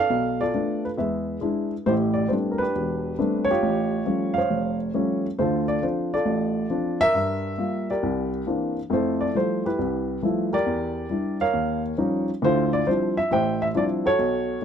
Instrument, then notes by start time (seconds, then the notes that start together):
grand piano
Already playing: A4 D5 F5
0.10 B1 B2
0.41 F4 A4 D5
0.54 A3 B3 D4
0.85 B4
0.97 E2 G#3 G#4 B4 E5
1.41 G#3 D4 E4
1.86 A1 A2 E4 G4 C5
2.14 D5
2.28 G3 A3 B3 C4 D4 C5
2.51 A#4
2.58 G4 B4
2.63 D4
2.75 E1
3.19 G3 A3 B3 C4 D4
3.45 C#5
3.51 F4 G4
3.63 A1
4.06 F3 G3 A3 C#4
4.34 F5
4.38 C5 C#5
4.50 F1
4.94 F3 G3 A3 C#4
5.39 D2 D3 F4 A4 C5
5.68 D5
5.82 F3 C4 D4 C5
6.14 F4 A4 D5
6.26 A1
6.70 F3 C4 D4
7.01 A#4 E5
7.15 G2
7.58 G3 A#3 F4
7.90 G4 A#4 D5
8.03 C2
8.47 E3 A#3 C4 D4
8.90 F2 A3 E4 C5
8.94 A4
9.21 D5
9.35 F3 G3 A3 E4 C5
9.65 E4 G4 B4
9.79 C2
10.22 F3 G3 A3 E4
10.53 G4 A#4 D5
10.66 E2
11.09 G3 D4 E4
11.41 A#4 C#5 F5
11.53 D#2
11.98 F3 G3 C#4 D#4
12.42 D2 D3 E4 F4 C5
12.73 D5
12.86 F3 G3 C4 D4 E4 C5
13.17 E5
13.31 A1 A2 C5 E5 G5
13.62 E5
13.74 F3 G3 C4 D4 E4 D5
14.05 F#4 A4 C#5
14.19 B1